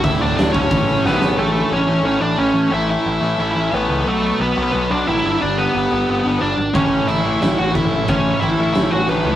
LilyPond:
<<
  \new Staff \with { instrumentName = "Lead electric guitar" } { \time 4/4 \key a \mixolydian \tempo 4 = 179 <e' e''>8 <d' d''>8 <d' d''>8 <cis' cis''>4. <b b'>4 | <a a'>4 <cis' cis''>4 <cis' cis''>8 <d' d''>8 <cis' cis''>4 | <e' e''>8 <e' e''>2~ <e' e''>8 <b b'>4 | <a a'>4 <b b'>4 <b b'>8 <d' d''>8 <e' e''>4 |
<d' d''>8 <b b'>2~ <b b'>8 <d' d''>4 | <cis' cis''>4 <e' e''>4 <e' e''>8 <fis' fis''>8 <e' e''>4 | <cis' cis''>4 <e' e''>4 <e' e''>8 <fis' fis''>8 <b b'>4 | }
  \new Staff \with { instrumentName = "Distorted electric guitar" } { \clef bass \time 4/4 \key a \mixolydian <d, a, d>8 <d, a, d>8 <d, a, d>8 <d, a, d>8 <a, e a>8 <a, e a>8 <a, e a>8 <a, e a>8 | <a, e a>4. <a, e a>4. <a, e a>4 | <a, e a>4. <a, e a>4. <a, e a>4 | <b, fis b>4. <b, fis b>4. <b, fis b>8 <g, d g>8~ |
<g, d g>4 <g, d g>4. <g, d g>4 r8 | <a, e a>4. <a, e a>4. <a, e a>4 | <a, e a>4. <a, e a>4. <a, e a>4 | }
  \new Staff \with { instrumentName = "Distorted electric guitar" } { \clef bass \time 4/4 \key a \mixolydian <d, a, d>8 <d, a, d>8 <d, a, d>8 <d, a, d>8 <a, e a>8 <a, e a>8 <a, e a>8 <a, e a>8 | <a, e a>2 <a, e a>2 | <a, e a>2 <a, e a>2 | <b, fis b>2 <b, fis b>4. <g, d g>8~ |
<g, d g>4. <g, d g>2 r8 | <a, e a>2 <a, e a>2 | <a, e a>2 <a, e a>2 | }
  \new Staff \with { instrumentName = "Picked electric bass" } { \clef bass \time 4/4 \key a \mixolydian d,,8 d,,8 d,,8 d,,8 a,,4 a,,8 a,,8 | a,,4 a,,8 a,,8 a,,8 a,,8 a,,8 a,,8 | a,,4 a,,8 a,,8 a,,8 a,,8 a,,8 cis,8 | b,,4 b,,8 b,,8 b,,8 b,,8 a,,8 g,,8 |
g,,4 g,,8 g,,8 g,,8 g,,8 g,,8 gis,,8 | a,,4 a,,8 a,,8 a,,8 a,,8 a,,8 a,,8 | a,,4 a,,8 a,,8 a,,8 a,,8 a,,8 cis,8 | }
  \new DrumStaff \with { instrumentName = "Drums" } \drummode { \time 4/4 <hho bd>4 <hho sn>8 bd8 <hho bd>4 sn8 sn8 | r4 r4 r4 r4 | r4 r4 r4 r4 | r4 r4 r4 r4 |
r4 r4 r4 r4 | <cymc bd>4 cymc4 <cymc sn>4 <cymc bd>4 | <cymc bd>4 cymc4 <cymc sn>4 cymc4 | }
>>